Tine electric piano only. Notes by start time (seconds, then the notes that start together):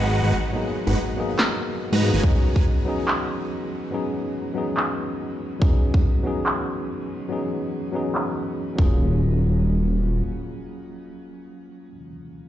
Already playing: F#3 B3 D#4 G#4
0.52 F#3 A#3 B3 D#4 G#4
1.16 F#3 A#3 B3 D#4 G#4
2.01 F#3 A#3 B3 D#4 G#4
2.22 F#3 B3 C#4 D#4 G#4
2.85 F#3 B3 C#4 D#4 G#4
3.91 F#3 B3 C#4 D#4 G#4
4.54 F#3 B3 C#4 D#4
4.58 G#4
5.60 F#3 B3 C#4 D#4 G#4
6.23 F#3 B3 C#4 D#4 G#4
7.29 F#3 B3 C#4 D#4 G#4
7.92 F#3 B3 C#4 D#4
7.96 G#4
8.76 F#3 A#3 C#4
8.80 F4 G#4